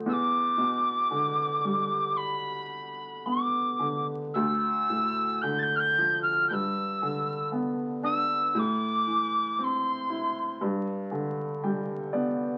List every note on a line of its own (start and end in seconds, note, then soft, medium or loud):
0.06 4.30 E2 medium
0.06 0.14 E6 medium
0.13 2.18 D6 medium
0.58 2.67 B2 soft
1.11 3.22 D3 soft
1.64 3.76 G3 soft
2.17 3.27 B5 medium
3.26 4.31 B3 soft
3.26 4.06 D6 medium
3.79 4.32 D3 soft
4.33 6.47 D2 medium
4.33 5.43 E6 loud
4.90 6.47 A2 soft
5.41 6.47 D3 soft
5.41 5.59 G6 loud
5.58 5.76 G6 loud
5.58 5.63 A6 medium
5.75 5.80 F6 medium
5.75 6.21 G6 loud
5.98 6.49 F3 medium
6.22 6.47 F6 medium
6.48 8.52 G2 medium
6.48 6.54 G6 medium
6.53 7.48 E6 medium
7.02 8.52 D3 soft
7.52 8.52 B3 soft
8.03 8.54 D4 soft
8.03 8.55 E6 medium
8.55 10.56 A2 medium
8.55 8.60 E6 medium
8.59 9.60 D6 medium
9.07 10.57 E3 soft
9.59 10.58 C4 soft
9.59 9.64 D6 medium
9.63 10.61 C6 medium
10.10 10.59 E4 soft
10.61 12.58 G2 medium
11.11 12.58 D3 soft
11.63 12.58 G3 medium
11.63 12.10 G5 medium
12.13 12.58 B3 medium
12.13 12.58 D5 medium